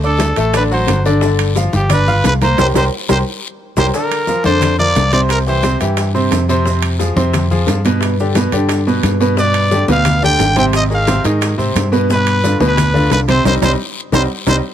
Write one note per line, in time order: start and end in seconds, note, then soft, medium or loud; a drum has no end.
0.00 0.31 D2 medium
0.00 0.31 D4 medium
0.00 high conga soft
0.00 maracas soft
0.04 0.36 A4 medium
0.04 0.32 D5 medium
0.04 0.32 D6 medium
0.18 high bongo medium
0.18 high conga medium
0.18 high timbale medium
0.18 low timbale medium
0.18 short guiro medium
0.18 maracas medium
0.36 0.84 A1 medium
0.36 0.51 A3 medium
0.36 0.51 A4 medium
0.36 0.54 A4 medium
0.36 0.51 A5 medium
0.36 high bongo soft
0.36 high conga soft
0.36 high timbale medium
0.36 short guiro medium
0.36 maracas soft
0.54 0.68 D3 medium
0.54 0.68 D4 medium
0.54 0.64 B4 medium
0.54 0.68 D5 medium
0.54 high bongo medium
0.54 high conga soft
0.54 high timbale medium
0.54 long guiro medium
0.54 maracas medium
0.71 0.99 F#3 medium
0.71 0.99 F#4 medium
0.71 1.04 C5 medium
0.71 1.00 F#5 medium
0.71 high bongo soft
0.71 high conga soft
0.71 maracas soft
0.87 1.67 G1 medium
0.87 high bongo soft
0.87 low bongo medium
0.87 high conga medium
0.87 high timbale medium
0.87 low timbale medium
0.87 short guiro medium
0.87 maracas medium
1.05 1.19 D3 medium
1.05 1.19 D4 medium
1.05 1.20 D5 medium
1.05 high bongo soft
1.05 high conga soft
1.05 short guiro medium
1.05 maracas soft
1.21 1.50 D3 medium
1.21 1.50 D4 medium
1.21 1.50 D5 medium
1.21 high bongo medium
1.21 high conga soft
1.21 long guiro medium
1.21 maracas medium
1.39 high conga soft
1.39 high timbale loud
1.39 maracas soft
1.56 1.84 F3 medium
1.56 1.84 F4 medium
1.56 1.84 F5 medium
1.56 high bongo medium
1.56 high conga medium
1.56 low timbale medium
1.56 short guiro medium
1.56 maracas medium
1.72 2.21 G1 medium
1.72 1.90 G4 medium
1.72 high bongo soft
1.72 high conga medium
1.72 short guiro medium
1.72 maracas soft
1.90 2.04 D4 medium
1.90 2.23 B4 medium
1.90 2.04 D5 medium
1.90 2.04 D6 medium
1.90 high bongo medium
1.90 high conga soft
1.90 low conga medium
1.90 high timbale loud
1.90 long guiro medium
1.90 maracas medium
2.07 2.35 F4 medium
2.07 2.35 F5 medium
2.07 2.35 F6 medium
2.07 high bongo soft
2.07 high conga soft
2.07 low conga medium
2.07 maracas soft
2.24 2.56 C2 medium
2.24 2.34 B4 loud
2.24 high bongo soft
2.24 low bongo medium
2.24 high conga medium
2.24 high timbale medium
2.24 low timbale medium
2.24 short guiro medium
2.24 maracas medium
2.41 2.55 A#3 medium
2.41 2.56 A#4 medium
2.41 2.58 C5 medium
2.41 2.56 A#5 medium
2.41 high bongo soft
2.41 high conga medium
2.41 high timbale medium
2.41 short guiro medium
2.41 maracas soft
2.58 2.71 C2 medium
2.58 2.69 G4 medium
2.58 2.69 A#4 medium
2.58 2.69 C5 medium
2.58 2.67 C5 medium
2.58 high bongo loud
2.58 high conga medium
2.58 high timbale loud
2.58 long guiro medium
2.58 maracas medium
2.74 2.88 C2 loud
2.74 2.86 G4 medium
2.74 2.86 A#4 medium
2.74 2.86 C5 medium
2.74 2.85 C5 medium
2.74 high bongo loud
2.74 high conga loud
2.74 high timbale loud
2.74 long guiro loud
2.74 maracas loud
3.09 3.22 C2 loud
3.09 3.20 G4 medium
3.09 3.20 A#4 medium
3.09 3.20 C5 medium
3.09 3.19 C5 medium
3.09 high bongo loud
3.09 high conga loud
3.09 high timbale medium
3.09 long guiro loud
3.09 maracas medium
3.77 3.89 C2 loud
3.77 3.88 G4 loud
3.77 3.88 A#4 loud
3.77 3.88 C5 loud
3.77 3.87 C5 medium
3.77 high bongo loud
3.77 high conga loud
3.77 high timbale medium
3.77 long guiro medium
3.77 maracas loud
3.94 4.22 D3 medium
3.94 4.22 D4 medium
3.94 4.42 A#4 medium
3.94 4.23 D5 medium
3.94 high bongo medium
3.94 high conga soft
3.94 long guiro medium
3.94 maracas medium
4.11 high conga soft
4.11 high timbale loud
4.11 maracas soft
4.27 4.42 F3 medium
4.27 4.42 F4 medium
4.27 4.43 A#4 medium
4.27 high bongo medium
4.27 high conga medium
4.27 low timbale medium
4.27 short guiro medium
4.27 maracas medium
4.44 4.92 F2 medium
4.44 4.73 D3 medium
4.44 4.73 D4 medium
4.44 4.77 C5 medium
4.44 4.73 D5 medium
4.44 high bongo soft
4.44 high conga medium
4.44 short guiro medium
4.44 maracas soft
4.61 high bongo medium
4.61 high conga soft
4.61 low conga medium
4.61 high timbale medium
4.61 long guiro medium
4.61 maracas medium
4.79 5.07 F3 medium
4.79 5.07 F4 medium
4.79 5.07 A#4 medium
4.79 5.11 D5 medium
4.79 high bongo soft
4.79 high conga soft
4.79 low conga medium
4.79 maracas soft
4.95 5.75 C2 medium
4.95 high bongo soft
4.95 low bongo medium
4.95 high conga medium
4.95 high timbale medium
4.95 low timbale medium
4.95 short guiro medium
4.95 maracas medium
5.12 5.41 C3 medium
5.12 5.41 C4 medium
5.12 5.41 C5 medium
5.12 5.21 D5 loud
5.12 high bongo soft
5.12 high conga medium
5.12 high timbale medium
5.12 short guiro medium
5.12 maracas soft
5.29 5.38 A#4 medium
5.29 high bongo medium
5.29 high conga soft
5.29 high timbale medium
5.29 long guiro medium
5.29 maracas medium
5.46 5.61 E3 medium
5.46 5.61 E4 medium
5.46 5.61 G4 medium
5.46 5.79 C5 medium
5.46 high conga soft
5.46 maracas soft
5.63 5.77 C3 medium
5.63 5.77 C4 medium
5.63 5.78 C5 medium
5.63 high bongo medium
5.63 high conga medium
5.63 high timbale medium
5.63 low timbale medium
5.63 short guiro medium
5.63 maracas medium
5.80 6.29 G2 medium
5.80 6.09 E3 medium
5.80 6.09 E4 medium
5.80 6.09 G4 medium
5.80 high bongo soft
5.80 high conga soft
5.80 high timbale medium
5.80 short guiro medium
5.80 maracas soft
5.97 high bongo medium
5.97 high conga soft
5.97 high timbale medium
5.97 long guiro medium
5.97 maracas medium
6.14 6.43 C3 medium
6.14 6.43 C4 medium
6.14 6.43 C5 medium
6.14 high bongo soft
6.14 high conga soft
6.14 maracas soft
6.31 7.11 F2 medium
6.31 high bongo soft
6.31 low bongo medium
6.31 high conga medium
6.31 high timbale medium
6.31 low timbale medium
6.31 short guiro medium
6.31 maracas medium
6.48 6.63 C3 loud
6.48 6.63 C4 medium
6.48 6.63 C5 medium
6.48 high bongo soft
6.48 high conga soft
6.48 short guiro medium
6.48 maracas soft
6.65 6.93 C3 medium
6.65 6.94 C4 medium
6.65 6.94 C5 medium
6.65 high bongo medium
6.65 high conga soft
6.65 long guiro medium
6.65 maracas medium
6.82 high conga soft
6.82 high timbale loud
6.82 maracas soft
6.99 7.13 F3 medium
6.99 7.14 F4 medium
6.99 7.14 G#4 medium
6.99 high bongo medium
6.99 high conga medium
6.99 low timbale medium
6.99 short guiro medium
6.99 maracas medium
7.16 7.64 F2 medium
7.16 7.44 C3 medium
7.16 7.45 C4 medium
7.16 7.45 C5 medium
7.16 high bongo soft
7.16 high conga medium
7.16 short guiro medium
7.16 maracas soft
7.33 high bongo medium
7.33 high conga soft
7.33 low conga medium
7.33 high timbale medium
7.33 long guiro medium
7.33 maracas medium
7.50 7.79 F3 medium
7.50 7.79 F4 medium
7.50 7.79 G#4 medium
7.50 high bongo soft
7.50 high conga soft
7.50 low conga medium
7.50 maracas soft
7.67 8.47 G2 medium
7.67 high bongo soft
7.67 low bongo medium
7.67 high conga medium
7.67 high timbale medium
7.67 low timbale medium
7.67 short guiro medium
7.67 maracas medium
7.84 8.13 B2 medium
7.84 8.13 B3 medium
7.84 8.13 B4 medium
7.84 high bongo soft
7.84 high conga medium
7.84 high timbale medium
7.84 short guiro medium
7.84 maracas soft
8.01 high bongo medium
8.01 high conga soft
8.01 high timbale medium
8.01 long guiro medium
8.01 maracas medium
8.19 8.34 D3 medium
8.19 8.34 D4 medium
8.19 8.34 G4 medium
8.19 high conga soft
8.19 maracas soft
8.35 8.50 B2 medium
8.35 8.50 B3 medium
8.35 8.50 B4 medium
8.35 high bongo medium
8.35 high conga medium
8.35 high timbale medium
8.35 low timbale medium
8.35 short guiro medium
8.35 maracas medium
8.52 9.00 G2 medium
8.52 8.81 D3 medium
8.52 8.81 D4 medium
8.52 8.81 G4 medium
8.52 high bongo soft
8.52 high conga soft
8.52 high timbale medium
8.52 short guiro medium
8.52 maracas soft
8.69 high bongo medium
8.69 high conga soft
8.69 high timbale medium
8.69 long guiro medium
8.69 maracas medium
8.86 9.15 B2 medium
8.86 9.15 B3 medium
8.86 9.15 B4 medium
8.86 high bongo soft
8.86 high conga soft
8.86 maracas soft
9.03 9.83 G2 medium
9.03 high bongo soft
9.03 low bongo medium
9.03 high conga medium
9.03 high timbale medium
9.03 low timbale medium
9.03 short guiro medium
9.03 maracas medium
9.20 9.34 B2 medium
9.20 9.35 B3 medium
9.20 9.35 B4 medium
9.20 high bongo soft
9.20 high conga soft
9.20 short guiro medium
9.20 maracas soft
9.37 9.65 B2 medium
9.37 9.65 B3 medium
9.37 9.65 B4 medium
9.37 9.86 D5 medium
9.37 high bongo medium
9.37 high conga soft
9.37 long guiro medium
9.37 maracas medium
9.54 high conga soft
9.54 high timbale medium
9.54 maracas soft
9.71 9.85 D3 medium
9.71 9.85 D4 medium
9.71 9.86 G4 medium
9.71 high bongo medium
9.71 high conga medium
9.71 low timbale medium
9.71 short guiro medium
9.71 maracas medium
9.88 10.36 D2 medium
9.88 10.16 B2 medium
9.88 10.16 B3 medium
9.88 10.17 B4 medium
9.88 10.22 F5 medium
9.88 high bongo soft
9.88 high conga medium
9.88 short guiro medium
9.88 maracas soft
10.05 high bongo medium
10.05 high conga soft
10.05 low conga medium
10.05 high timbale medium
10.05 long guiro medium
10.05 maracas medium
10.22 10.50 D3 medium
10.22 10.51 D4 medium
10.22 10.51 G4 medium
10.22 10.55 G5 loud
10.22 high bongo soft
10.22 high conga soft
10.22 low conga medium
10.22 maracas soft
10.39 11.18 G#1 medium
10.39 high bongo soft
10.39 low bongo medium
10.39 high conga medium
10.39 high timbale medium
10.39 low timbale medium
10.39 short guiro medium
10.39 maracas medium
10.56 10.84 C3 loud
10.56 10.84 C4 medium
10.56 10.85 C5 medium
10.56 10.66 G5 medium
10.56 high bongo soft
10.56 high conga medium
10.56 high timbale medium
10.56 short guiro medium
10.56 maracas soft
10.73 10.83 D#5 medium
10.73 high bongo medium
10.73 high conga soft
10.73 high timbale medium
10.73 long guiro medium
10.73 maracas medium
10.90 11.04 D#3 medium
10.90 11.04 D#4 medium
10.90 11.05 G#4 medium
10.90 high conga soft
10.90 maracas soft
10.94 11.24 F5 medium
11.07 11.22 C3 medium
11.07 11.22 C4 medium
11.07 11.22 C5 medium
11.07 high bongo medium
11.07 high conga medium
11.07 high timbale medium
11.07 low timbale medium
11.07 short guiro medium
11.07 maracas medium
11.24 11.56 G#2 medium
11.24 11.52 D#3 medium
11.24 11.53 D#4 medium
11.24 11.53 G#4 medium
11.24 high bongo soft
11.24 high conga soft
11.24 high timbale medium
11.24 short guiro medium
11.24 maracas soft
11.41 high bongo medium
11.41 high conga soft
11.41 high timbale loud
11.41 long guiro medium
11.41 maracas medium
11.58 11.74 G#2 medium
11.58 11.86 C3 medium
11.58 11.86 C4 medium
11.58 11.86 C5 medium
11.58 high bongo soft
11.58 high conga soft
11.58 maracas soft
11.75 12.55 G2 medium
11.75 high bongo soft
11.75 low bongo medium
11.75 high conga medium
11.75 high timbale loud
11.75 low timbale medium
11.75 short guiro medium
11.75 maracas medium
11.92 12.06 B2 medium
11.92 12.06 B3 medium
11.92 12.07 B4 medium
11.92 high bongo soft
11.92 high conga soft
11.92 short guiro medium
11.92 maracas soft
12.10 12.37 B2 medium
12.10 12.37 B3 medium
12.10 12.38 B4 medium
12.10 12.58 B4 medium
12.10 high bongo medium
12.10 high conga soft
12.10 long guiro medium
12.10 maracas medium
12.27 high conga soft
12.27 high timbale loud
12.27 maracas soft
12.43 12.57 D3 medium
12.43 12.58 D4 medium
12.43 12.57 F4 medium
12.43 high bongo medium
12.43 high conga medium
12.43 low timbale medium
12.43 short guiro medium
12.43 maracas medium
12.60 13.07 D2 medium
12.60 12.88 B2 medium
12.60 12.88 B3 medium
12.60 12.88 B4 medium
12.60 high bongo soft
12.60 high conga medium
12.60 short guiro medium
12.60 maracas soft
12.68 13.09 B4 medium
12.77 high bongo medium
12.77 high conga soft
12.77 low conga medium
12.77 high timbale loud
12.77 long guiro medium
12.77 maracas medium
12.94 13.22 D3 medium
12.94 13.22 D4 medium
12.94 13.22 F4 medium
12.94 high bongo soft
12.94 high conga soft
12.94 low conga medium
12.94 maracas soft
13.11 13.43 C2 medium
13.11 13.20 B4 loud
13.11 high bongo soft
13.11 low bongo medium
13.11 high conga medium
13.11 high timbale medium
13.11 low timbale medium
13.11 short guiro medium
13.11 maracas medium
13.28 13.42 C3 medium
13.28 13.42 C4 loud
13.28 13.42 C5 medium
13.28 13.45 C5 medium
13.28 high bongo soft
13.28 high conga medium
13.28 high timbale medium
13.28 short guiro medium
13.28 maracas soft
13.44 13.57 C2 medium
13.44 13.56 G3 medium
13.44 13.56 C4 medium
13.44 13.56 D#4 medium
13.44 13.55 C5 loud
13.44 low bongo medium
13.44 high conga medium
13.44 high timbale medium
13.44 long guiro loud
13.44 maracas medium
13.61 13.74 C2 loud
13.61 13.73 G3 loud
13.61 13.73 C4 medium
13.61 13.73 D#4 medium
13.61 13.72 C5 medium
13.61 low bongo medium
13.61 high conga loud
13.61 high timbale loud
13.61 long guiro loud
13.61 maracas loud
14.12 14.25 C2 medium
14.12 14.24 G3 loud
14.12 14.24 C4 medium
14.12 14.24 D#4 medium
14.12 14.22 C5 loud
14.12 low bongo loud
14.12 high conga loud
14.12 high timbale loud
14.12 long guiro medium
14.12 maracas medium
14.46 14.59 C2 medium
14.46 14.58 G3 medium
14.46 14.58 C4 medium
14.46 14.58 D#4 medium
14.46 14.56 C5 loud
14.46 low bongo medium
14.46 high conga medium
14.46 high timbale loud
14.46 long guiro medium
14.46 maracas loud